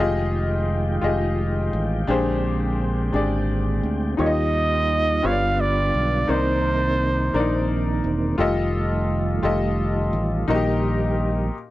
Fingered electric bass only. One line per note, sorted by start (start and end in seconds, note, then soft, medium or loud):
0.00 0.99 F1 medium
1.03 1.69 F1 medium
1.73 2.06 A1 medium
2.08 3.09 A#1 medium
3.14 3.80 G#1 medium
3.83 4.16 D2 medium
4.19 5.20 D#2 medium
5.24 5.90 G1 medium
5.94 6.26 B1 medium
6.29 7.30 C2 medium
7.34 8.00 A#1 medium
8.04 8.36 E1 medium
8.38 9.39 F1 medium
9.43 10.09 F1 medium
10.13 10.45 A1 medium
10.48 11.49 A#1 medium